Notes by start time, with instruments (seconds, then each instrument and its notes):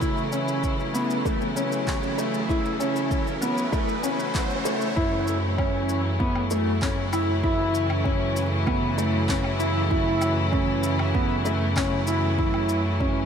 Already playing: string section C#3 E3 F#3 A3 E4, riser
0.01 grand piano E4, kick, shaker
0.17 shaker
0.32 grand piano C#4, shaker
0.48 shaker
0.64 kick, shaker
0.80 shaker
0.94 grand piano B3, shaker
1.10 shaker
1.25 grand piano A3, kick, shaker
1.41 shaker
1.56 grand piano C#4, shaker
1.72 shaker
1.87 kick, clap, shaker
2.03 shaker
2.18 grand piano A3, shaker
2.34 shaker
2.49 grand piano E4, kick, shaker
2.65 shaker
2.80 grand piano C#4, shaker
2.96 shaker
3.11 kick, shaker
3.27 shaker
3.42 grand piano B3, shaker
3.58 shaker
3.72 grand piano A3, kick, swell, shaker
3.88 shaker
4.03 grand piano C#4, shaker
4.19 shaker
4.35 kick, clap, shaker
4.50 shaker
4.65 grand piano A3, shaker
4.81 shaker
4.96 sub bass F#2, string section C#3 E3 F#3 A3 E4, grand piano E4, kick
5.28 shaker
5.58 grand piano C#4, kick, low woodblock
5.89 shaker
6.20 grand piano B3, kick
6.36 low woodblock
6.51 grand piano A3, shaker
6.82 grand piano C#4, kick, clap
7.13 grand piano E4, low woodblock, shaker
7.43 grand piano E4, kick
7.75 shaker
7.90 low woodblock
8.04 grand piano C#4, kick
8.36 shaker
8.66 grand piano B3, kick, low woodblock
8.98 grand piano A3, shaker
9.29 grand piano C#4, kick, clap
9.44 low woodblock
9.59 grand piano E4, shaker
9.90 grand piano E4, kick
10.21 low woodblock, shaker
10.52 grand piano C#4, kick
10.83 shaker
10.99 low woodblock
11.14 grand piano B3, kick
11.45 grand piano A3, shaker
11.76 grand piano C#4, kick, clap, low woodblock
12.07 grand piano E4, shaker
12.38 grand piano E4, kick
12.54 low woodblock
12.69 shaker
13.00 grand piano C#4, kick